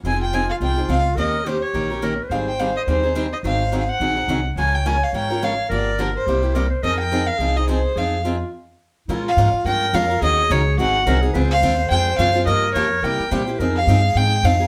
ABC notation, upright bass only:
X:1
M:4/4
L:1/8
Q:"Swing" 1/4=212
K:Fm
V:1 name="Upright bass" clef=bass
F,,,4 C,,2 D,,2 | E,,4 B,,,4 | A,,,4 E,,4 | A,,,4 B,,,2 C,,2 |
D,,4 A,,,4 | G,,,4 C,,4 | F,,4 C,,4 | F,,4 z4 |
B,,2 A,, z G,,2 F,,2 | E,,2 D,,2 A,,,2 C,,2 | D,,2 E,,2 F,,2 _G,,2 | G,,2 F,,2 C, z B,,2 |
F,,2 G,,2 A,,2 F,,2 |]